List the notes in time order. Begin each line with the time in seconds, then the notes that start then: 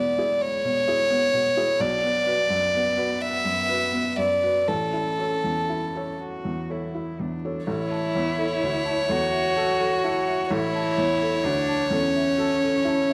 Already playing: E2 B2 G#3 B3 E4 G#4 D5
0.18 E4 G#4
0.42 C#5
0.64 B2
0.87 E4 G#4
1.10 B3
1.33 B2
1.57 E4 G#4
1.80 B1 B3 D5
2.04 B3
2.27 F#4 B4
2.49 F#2
2.74 B3
2.97 F#4 B4
3.20 E5
3.45 F#2
3.69 F#4 B4
3.92 B3
4.17 F#2 D5
4.43 F#4 B4
4.68 A1 C#4 A4
4.93 E4
5.19 A4 C#5
5.44 E2
5.69 E4
5.95 A4 C#5
6.20 F#4
6.45 E2
6.70 E4 A4 C#5
6.95 E4
7.20 E2 D4
7.45 A4 C#5
7.66 A1 E4 A4 C#5
7.91 A5
8.14 E2 C#5
8.38 A4
8.61 D2 C#5
8.85 A5
9.09 E2 F#4 A4
9.33 E5
9.56 A4 A5
9.79 A4
10.04 E4 A5
10.27 E5
10.51 A1 E4 A4 C#5
10.75 A5
10.98 E2 C#5
11.22 A4
11.44 D2 D4 C#5
11.69 A5
11.90 E2 C#4 A4
12.16 E5
12.38 A4 A5
12.63 A4
12.85 E4 A5